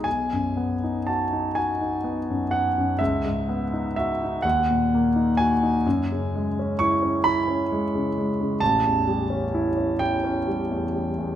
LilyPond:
<<
  \new Staff \with { instrumentName = "Grand piano" } { \time 6/8 \key b \mixolydian \tempo 4. = 43 gis''4 a''8 gis''4 fis''8 | e''4 e''8 fis''4 gis''8~ | gis''4 cis'''8 b''4. | a''4. g''8 r4 | }
  \new Staff \with { instrumentName = "Grand piano" } { \time 6/8 \key b \mixolydian b,,16 fis,16 b16 dis'16 fis'16 dis'16 fis'16 dis'16 b16 fis,16 b16 fis,16 | cis,16 gis,16 b16 dis'16 fis'16 dis'16 dis,16 ais,16 ais16 dis'16 fis'16 dis'16 | fis,16 cis16 gis16 cis'16 e'16 cis'16 e'16 cis'16 gis16 cis16 gis16 cis16 | a,,16 e,16 g16 cis'16 e'16 cis'16 e'16 cis'16 g16 e,16 g16 e,16 | }
>>